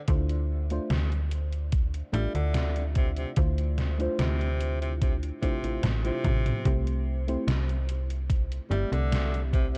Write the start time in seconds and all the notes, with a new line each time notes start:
0.07 D2 A3 D4 E4 F4 C5, kick, closed hi-hat
0.29 closed hi-hat
0.70 A3 D4 E4 F4 C5, closed hi-hat
0.90 D2, snare, closed hi-hat
1.12 closed hi-hat
1.31 closed hi-hat
1.52 closed hi-hat
1.72 kick, closed hi-hat
1.94 closed hi-hat
2.12 A1 G3 A3 D4 E4 F4 E5, closed hi-hat
2.35 D2 D3, closed hi-hat
2.55 snare, closed hi-hat
2.76 closed hi-hat
2.96 C3, kick, closed hi-hat
3.17 C3, closed hi-hat
3.37 D2 A3 D4 E4 F4 C5, kick, closed hi-hat
3.58 closed hi-hat
3.78 snare, closed hi-hat
3.98 A3 D4 E4 F4 C5, closed hi-hat
4.19 D2 C3, snare, closed hi-hat
4.41 closed hi-hat
4.60 closed hi-hat
4.81 C3, closed hi-hat
5.01 C3, kick, closed hi-hat
5.23 closed hi-hat
5.42 C3 A3 D4 E4 F4 C5, kick, closed hi-hat
5.63 A1 A3 D4 E4 F4 C5, closed hi-hat
5.83 A1, snare, closed hi-hat
6.04 C3 A3 D4 E4 F4 C5, closed hi-hat
6.25 A1, kick, closed hi-hat, high tom
6.46 closed hi-hat, mid tom
6.65 C2 A3 C4 E4 G4 C5, kick, closed hi-hat
6.87 closed hi-hat
7.27 A3 C4 E4 G4 C5, closed hi-hat
7.47 C2, snare, closed hi-hat
7.69 closed hi-hat
7.89 closed hi-hat
8.10 closed hi-hat
8.30 kick, closed hi-hat
8.52 closed hi-hat
8.69 G1 G3 A3 C4 E4 G4 E5, closed hi-hat
8.92 C2 D3, closed hi-hat
9.12 snare, closed hi-hat
9.34 closed hi-hat
9.52 C3, kick, closed hi-hat
9.74 C3